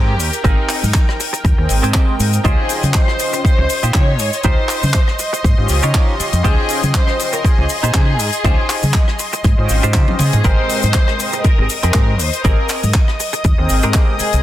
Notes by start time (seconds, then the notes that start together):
Already playing: G#2 C4 G4 G#4 A#4 G5
0.19 D#2, open hi-hat, cabasa
0.33 closed hi-hat, cabasa
0.44 G#1 C4 D#4 G4 G#4 A#4 F5, kick, closed hi-hat, cabasa
0.69 clap, open hi-hat, cabasa
0.83 G#2, open hi-hat, high conga, cabasa
0.94 kick, clap, cabasa
1.09 cross-stick
1.20 muted clean electric guitar stroke, open hi-hat, cabasa
1.33 muted clean electric guitar stroke, closed hi-hat, cabasa
1.44 D#2, muted clean electric guitar stroke, kick, closed hi-hat, cabasa
1.58 D#2 C4 G#4 A#4 D#5 G5, muted clean electric guitar stroke
1.69 G#1, open hi-hat, cabasa
1.83 G#2 C4 G4 G#4 C5, closed hi-hat, cabasa
1.94 kick, clap, cabasa
2.08 G#3 C4 A#4 D#5 G5
2.20 G#2, open hi-hat, cabasa
2.33 closed hi-hat, cabasa
2.43 C#2 C#4 D#4 F4 G4 G#4 C5 D#5 G5 C6, kick, closed hi-hat, cabasa
2.69 open hi-hat, cabasa
2.83 C#3, closed hi-hat, high conga, cabasa
2.94 C5, kick, clap, closed hi-hat, cabasa
3.08 cross-stick
3.19 muted clean electric guitar stroke, open hi-hat, cabasa
3.33 muted clean electric guitar stroke, closed hi-hat, cabasa
3.45 C5, muted fingered electric bass stroke, muted clean electric guitar stroke, kick, closed hi-hat, cabasa
3.58 C#2 C#4 F4 G4 C5 D#5, muted clean electric guitar stroke
3.70 open hi-hat, cabasa
3.83 A#2 D#4 F4 G4 C5, closed hi-hat, cabasa
3.94 C#3 C#5, kick, clap, closed hi-hat, cabasa
4.19 G#2, open hi-hat, cabasa
4.33 closed hi-hat, cabasa
4.43 C#2 C#4 D#4 F4 G4 C5 F5, kick, closed hi-hat, cabasa
4.69 clap, open hi-hat, cabasa
4.83 C#3, open hi-hat, high conga, cabasa
4.93 kick, clap, closed hi-hat, cabasa
5.08 cross-stick
5.19 muted clean electric guitar stroke, open hi-hat, cabasa
5.33 muted clean electric guitar stroke, closed hi-hat, cabasa
5.44 G#2, muted clean electric guitar stroke, kick, closed hi-hat, cabasa
5.58 G#2 C#4 F4 G4 C5 D#5, muted clean electric guitar stroke
5.69 C#2, open hi-hat, cabasa
5.83 C#3 D#4 F4 G4 C#5, closed hi-hat, cabasa
5.94 kick, clap, closed hi-hat, cabasa
6.08 C#4 F4 G4 D#5 C6
6.20 muted fingered electric bass stroke, open hi-hat, cabasa
6.33 F2, closed hi-hat, cabasa
6.43 C#2 C#4 D#4 F4 G4 G#4 C5 D#5 G5 C6, kick, closed hi-hat, cabasa
6.69 open hi-hat, cabasa
6.83 C#3, closed hi-hat, high conga, cabasa
6.94 C5, kick, clap, closed hi-hat, cabasa
7.07 cross-stick
7.19 muted clean electric guitar stroke, open hi-hat, cabasa
7.33 A#4, muted clean electric guitar stroke, closed hi-hat, cabasa
7.45 G#4, muted fingered electric bass stroke, muted clean electric guitar stroke, kick, closed hi-hat, cabasa
7.57 C#2 C#4 F4 G4 C5 D#5, muted clean electric guitar stroke
7.69 open hi-hat, cabasa
7.83 A#2 D#4 F4 G4 C5, closed hi-hat, cabasa
7.94 C#3, kick, clap, closed hi-hat, cabasa
8.19 G#2, open hi-hat, cabasa
8.33 closed hi-hat, cabasa
8.44 C#2 C#4 D#4 F4 G4 C5 F5, kick, closed hi-hat, cabasa
8.69 clap, open hi-hat, cabasa
8.83 C#3, open hi-hat, high conga, cabasa
8.94 kick, clap, closed hi-hat, cabasa
9.08 cross-stick
9.19 muted clean electric guitar stroke, open hi-hat, cabasa
9.33 muted clean electric guitar stroke, closed hi-hat, cabasa
9.44 G#2, muted clean electric guitar stroke, kick, cross-stick, closed hi-hat, cabasa
9.58 G#2 C#4 F4 C5 D#5 G5, muted clean electric guitar stroke
9.69 G#1, open hi-hat, cabasa
9.83 G#2 D#4 F4 G4 C5, closed hi-hat, cabasa
9.94 C#3, kick, clap, closed hi-hat, cabasa
10.08 C#4 F4 G4 C5 D#5, high tom, high conga
10.19 C#3 G#4, open hi-hat, mid tom, cabasa
10.33 G#2, closed hi-hat, mid tom, cabasa
10.43 G#1 G#3 C4 G4 G#4 A#4 C5 D#5 G5 D#6, kick, closed hi-hat, cabasa
10.69 open hi-hat, cabasa
10.83 G#2, closed hi-hat, high conga, cabasa
10.94 kick, clap, closed hi-hat, cabasa
11.08 cross-stick
11.20 muted clean electric guitar stroke, open hi-hat, cabasa
11.33 muted clean electric guitar stroke, closed hi-hat, cabasa
11.44 A#4, muted fingered electric bass stroke, muted clean electric guitar stroke, kick, closed hi-hat, cabasa
11.58 G#1 C4 G4 G#4 A#4 D#5, muted clean electric guitar stroke
11.70 open hi-hat, cabasa
11.83 F2 C4 G4 G#4 A#4, closed hi-hat, cabasa
11.94 G#2, kick, clap, closed hi-hat, cabasa
12.19 D#2 C5, open hi-hat, cabasa
12.33 closed hi-hat, cabasa
12.44 G#1 C4 G4 G#4 A#4 F5, kick, closed hi-hat, cabasa
12.69 clap, open hi-hat, cabasa
12.83 G#2, open hi-hat, high conga, cabasa
12.94 kick, clap, closed hi-hat, cabasa
13.08 cross-stick
13.20 muted clean electric guitar stroke, open hi-hat, cabasa
13.33 muted clean electric guitar stroke, closed hi-hat, cabasa
13.44 D#2, muted clean electric guitar stroke, kick, closed hi-hat, cabasa
13.58 D#2 C4 G#4 A#4 D#5 G5, muted clean electric guitar stroke
13.69 G#1, open hi-hat, cabasa
13.83 G#2 C4 G4 G#4 A#4, closed hi-hat, cabasa
13.94 kick, clap, closed hi-hat, cabasa
14.08 G#3 C4 A#4 D#5 G5
14.19 G#4, muted fingered electric bass stroke, open hi-hat, cabasa
14.33 C2, closed hi-hat, cabasa